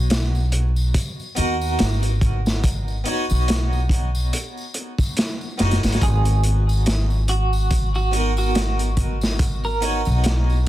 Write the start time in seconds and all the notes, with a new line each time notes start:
Already playing: B1 B3 D#4 F#4 C#5
0.10 snare, closed hi-hat, tambourine
0.35 tambourine
0.52 closed hi-hat
0.76 tambourine
0.94 kick, closed hi-hat, tambourine
1.20 tambourine
1.35 D#2 B3 D#4 F#4, closed hi-hat
1.39 A#4
1.61 tambourine
1.79 G#1, snare, closed hi-hat, tambourine
2.03 closed hi-hat, tambourine
2.21 kick, closed hi-hat
2.46 snare, tambourine
2.63 kick, closed hi-hat, tambourine
2.88 tambourine
3.04 B3 D#4 F#4, closed hi-hat
3.08 C#5
3.30 B1, tambourine
3.48 snare, closed hi-hat, tambourine
3.73 tambourine
3.89 kick, closed hi-hat
4.15 tambourine
4.33 closed hi-hat, tambourine
4.57 tambourine
4.74 closed hi-hat
4.98 kick, tambourine
5.17 snare, closed hi-hat, tambourine
5.41 tambourine
5.58 F#1 B3 D#4 F#4, snare, closed hi-hat
5.62 C#5
5.71 snare, closed hi-hat
5.83 G#1, snare, closed hi-hat, tambourine
5.92 snare, closed hi-hat
6.01 G#1 G#4, kick, closed hi-hat, tambourine
6.25 closed hi-hat, tambourine
6.43 closed hi-hat
6.69 tambourine
6.86 snare, closed hi-hat, tambourine
7.10 tambourine
7.28 F#4, closed hi-hat
7.53 tambourine
7.71 kick, closed hi-hat, tambourine
7.95 F#4, tambourine
8.11 B3 D#4 F#4 A#4, closed hi-hat
8.37 F#4, tambourine
8.55 snare, closed hi-hat, tambourine
8.79 closed hi-hat, tambourine
8.97 kick, closed hi-hat
9.21 snare, tambourine
9.39 kick, closed hi-hat, tambourine
9.64 A#4, tambourine
9.81 B3 D#4 F#4 C#5, closed hi-hat
10.05 B1, tambourine
10.24 snare, closed hi-hat, tambourine
10.50 tambourine